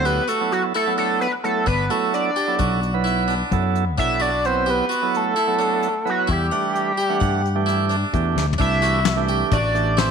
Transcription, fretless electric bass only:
0.00 0.18 D2 medium
1.67 1.87 G1 medium
2.59 3.42 B1 medium
3.51 3.98 F#2 medium
3.98 4.80 B1 medium
6.29 6.49 E2 medium
7.21 8.03 G2 medium
8.13 8.34 E2 medium
8.35 8.57 D2 medium
8.59 9.42 C2 medium
9.52 10.11 A1 medium

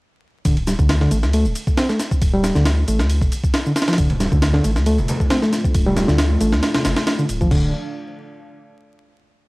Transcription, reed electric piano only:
0.45 0.56 D3 medium
0.67 0.73 G3 medium
0.79 1.00 D3 medium
1.01 1.10 D3 medium
1.11 1.17 A3 medium
1.34 1.45 A3 medium
1.78 1.87 C4 medium
1.90 1.98 A3 medium
2.33 2.54 G3 loud
2.55 2.64 D3 loud
2.88 2.99 A3 medium
3.66 3.71 D3 medium
3.88 3.96 F3 medium
3.98 4.09 D3 medium
4.20 4.26 G3 medium
4.32 4.53 D3 medium
4.54 4.63 D3 medium
4.64 4.70 A3 medium
4.87 4.98 A3 medium
5.30 5.40 C4 medium
5.42 5.51 A3 medium
5.86 6.07 G3 loud
6.08 6.17 D3 loud
6.41 6.52 A3 medium
7.19 7.24 D3 medium
7.41 7.49 F3 medium
7.51 7.72 D3 medium

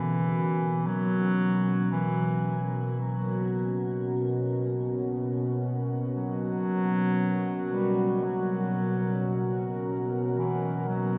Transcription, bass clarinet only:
0.00 0.89 E3 loud
0.87 1.91 F#3 loud
1.92 2.66 E3 medium
2.98 3.99 F#3 medium
6.16 7.68 F#3 loud
7.72 8.25 G3 medium
8.24 9.81 F#3 medium
10.35 10.83 E3 medium
10.88 11.18 F#3 medium

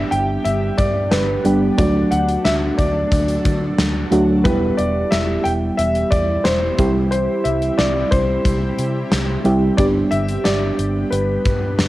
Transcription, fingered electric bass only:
0.12 0.36 G1 medium
0.45 0.69 G1 loud
0.79 1.13 G2 medium
1.12 1.36 G1 loud
1.45 1.69 G1 medium
1.78 2.03 D2 loud
2.12 2.36 D2 medium
2.45 2.69 D2 medium
2.79 3.03 D2 medium
3.12 3.36 D2 medium
3.45 3.69 D3 medium
3.78 4.03 D2 loud
4.12 4.47 D2 medium
4.45 4.69 E1 medium
4.79 5.03 E1 medium
5.12 5.36 E1 medium
5.45 5.69 E1 medium
5.79 6.03 E1 medium
6.12 6.36 E2 medium
6.45 6.69 E1 loud
6.79 7.27 C2 medium
7.45 7.69 C2 medium
7.79 8.03 C2 medium
8.12 8.36 C2 medium
8.45 8.69 C2 loud
8.78 9.03 C3 medium
9.12 9.36 C2 medium
9.45 9.69 C2 medium
9.79 10.03 G1 loud
10.12 10.36 G1 medium
10.45 10.69 G1 medium
10.79 11.03 G1 loud
11.12 11.36 G1 loud
11.45 11.81 G2 medium
11.79 11.88 G1 medium

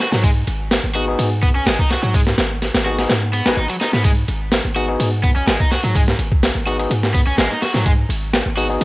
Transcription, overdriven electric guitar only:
0.12 0.23 F#3 medium
0.23 0.29 G#3 medium
0.95 1.04 F#4 medium
1.43 1.48 B3 loud
1.55 1.63 C#4 loud
1.66 1.78 G#3 medium
1.79 1.89 D#4 medium
1.90 1.99 F#4 medium
2.03 2.13 F#3 medium
2.14 2.20 G#3 medium
2.86 2.94 F#4 medium
3.33 3.45 B3 medium
3.46 3.57 G#3 medium
3.57 3.66 D#4 medium
3.70 3.74 F#3 medium
3.81 3.92 D#4 loud
3.94 4.01 B3 medium
4.05 4.10 G#3 medium
4.76 4.85 F#4 medium
5.24 5.29 B3 loud
5.36 5.44 C#4 loud
5.47 5.59 G#3 medium
5.60 5.70 D#4 medium
5.71 5.80 F#4 medium
5.84 5.94 F#3 medium
5.95 6.01 G#3 medium
6.67 6.75 F#4 medium
7.14 7.19 B3 loud
7.27 7.35 C#4 loud
7.38 7.49 G#3 medium
7.51 7.61 D#4 medium
7.62 7.71 F#4 medium
7.74 7.85 F#3 medium
7.86 7.91 G#3 medium
8.57 8.66 F#4 medium

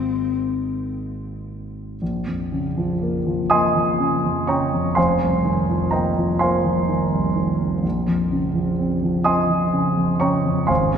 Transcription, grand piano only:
0.00 1.95 G#1 soft
0.00 1.95 D#3 soft
0.00 1.96 G#3 soft
0.00 1.96 A#3 soft
0.00 1.97 D#4 soft
2.02 4.93 A#1 soft
2.27 2.67 F2 soft
2.52 2.92 C#3 soft
2.77 3.16 F3 soft
3.02 3.40 A#3 soft
3.26 3.65 F3 soft
3.50 3.90 A#3 soft
3.50 4.44 D#5 medium
3.50 4.44 G#5 medium
3.50 4.44 C6 medium
3.50 4.48 D#6 medium
3.75 4.14 F3 soft
4.00 4.39 C#3 soft
4.25 4.63 F2 soft
4.47 4.88 C#3 soft
4.47 4.93 C#5 soft
4.47 4.94 G5 soft
4.47 4.94 A#5 soft
4.47 4.96 C#6 medium
4.73 4.97 F2 soft
4.95 7.80 F1 soft
4.95 5.89 C5 medium
4.95 5.89 F5 soft
4.95 5.89 G#5 soft
4.95 5.93 C6 medium
5.22 5.60 C2 soft
5.45 5.84 D#3 soft
5.70 6.08 F3 soft
5.91 6.31 A#3 soft
5.91 6.37 A#4 soft
5.91 6.37 D#5 soft
5.91 6.37 G5 soft
5.91 6.40 A#5 medium
6.17 6.55 F3 soft
6.39 6.79 A#3 soft
6.39 7.80 C5 soft
6.39 7.80 F5 soft
6.39 7.80 G#5 soft
6.39 7.83 C6 medium
6.64 7.03 F3 soft
6.89 7.27 D#3 soft
7.12 7.50 C2 soft
7.36 7.74 D#3 soft
7.60 7.84 C2 soft
7.83 10.65 A#1 soft
8.07 8.46 F2 soft
8.31 8.70 C#3 soft
8.55 8.94 F3 soft
8.79 9.17 C4 soft
9.03 9.41 F3 soft
9.24 9.64 C4 soft
9.24 10.17 D#5 medium
9.24 10.17 G#5 medium
9.24 10.16 C6 medium
9.24 10.20 D#6 medium
9.50 9.88 F3 soft
9.73 10.12 C#3 soft
9.97 10.35 F2 soft
10.20 10.60 C#3 soft
10.20 10.66 C#5 soft
10.20 10.66 G5 soft
10.20 10.66 A#5 soft
10.20 10.69 C#6 medium
10.45 10.69 F2 soft
10.67 10.98 G#1 soft
10.67 10.98 C5 soft
10.67 10.98 F5 medium
10.67 10.98 G#5 soft
10.67 10.98 C6 medium
10.93 10.98 D#2 soft

